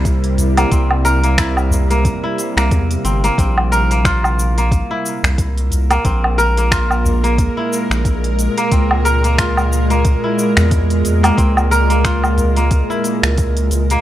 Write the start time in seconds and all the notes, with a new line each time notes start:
Already playing: C2 C3 G3 A#3 E4 A#4
0.05 kick, open hi-hat, cabasa
0.24 open hi-hat
0.37 open hi-hat, udu, cabasa
0.57 A#3, open hi-hat, cabasa, low woodblock
0.71 C2 C4, kick, open hi-hat, cabasa
0.91 low woodblock
1.05 A#4, open hi-hat, cabasa
1.24 A#3, open hi-hat, cabasa
1.38 E4, finger snap, kick, open hi-hat, cabasa
1.57 cabasa, low woodblock
1.71 udu, cabasa
1.90 A#3, open hi-hat, cabasa
2.04 kick, open hi-hat, udu, cabasa
2.24 E4
2.38 open hi-hat, cabasa
2.57 C2 A#3, finger snap, cabasa
2.71 E2, kick, open hi-hat, cabasa
2.91 open hi-hat, cabasa
3.05 G1 C4, open hi-hat, cabasa
3.24 A#3, open hi-hat, cabasa
3.38 A#1 A#2 C4, kick, open hi-hat, cabasa
3.58 low woodblock
3.71 G#3 A#4, open hi-hat, cabasa
3.91 A#3 A#4, open hi-hat, cabasa
4.05 F4, finger snap, kick, open hi-hat, cabasa
4.24 cabasa, low woodblock
4.39 cabasa
4.58 A#3, open hi-hat, cabasa
4.72 kick, open hi-hat, cabasa
4.91 E4
5.06 cabasa
5.24 C2, finger snap, udu, cabasa
5.38 kick, open hi-hat, cabasa
5.58 open hi-hat
5.70 open hi-hat, udu, cabasa
5.90 A#3, open hi-hat, cabasa, low woodblock
6.05 A#1 C4, kick, open hi-hat, cabasa
6.24 low woodblock
6.38 A#4, open hi-hat, cabasa
6.57 A#3, open hi-hat, cabasa
6.71 F4, finger snap, kick, open hi-hat, cabasa
6.91 cabasa, low woodblock
7.05 udu, cabasa
7.24 A#3, open hi-hat, cabasa
7.38 kick, open hi-hat, udu, cabasa
7.57 E4
7.73 cabasa
7.90 A#1, finger snap, cabasa
8.05 kick, open hi-hat, cabasa
8.24 open hi-hat
8.39 open hi-hat, cabasa
8.58 A#3, open hi-hat, cabasa
8.72 C#2 C4, kick, open hi-hat, cabasa
8.91 low woodblock
9.05 A#4, open hi-hat, cabasa
9.24 A#3, open hi-hat, cabasa
9.38 F4, finger snap, kick, open hi-hat, cabasa
9.57 cabasa, low woodblock
9.72 cabasa
9.90 A#3, open hi-hat, cabasa
10.05 kick, open hi-hat, cabasa
10.24 E4
10.39 cabasa
10.57 E2, finger snap, udu, cabasa
10.71 kick, open hi-hat, cabasa
10.90 open hi-hat
11.04 open hi-hat, udu, cabasa
11.23 A#3, open hi-hat, cabasa, low woodblock
11.37 C#2 C4, kick, open hi-hat, cabasa
11.57 cabasa, low woodblock
11.71 A#4, open hi-hat, cabasa
11.90 A#3, open hi-hat, cabasa
12.04 F4, finger snap, kick, open hi-hat, cabasa
12.24 cabasa, low woodblock
12.37 open hi-hat, udu, cabasa
12.56 A#3, open hi-hat, cabasa
12.71 kick, open hi-hat, udu, cabasa
12.90 E4, cabasa
13.04 open hi-hat, cabasa
13.23 C#2, finger snap, cabasa
13.38 kick, open hi-hat, cabasa
13.57 open hi-hat, cabasa
13.71 C#2, open hi-hat, cabasa
13.90 A#3, open hi-hat, cabasa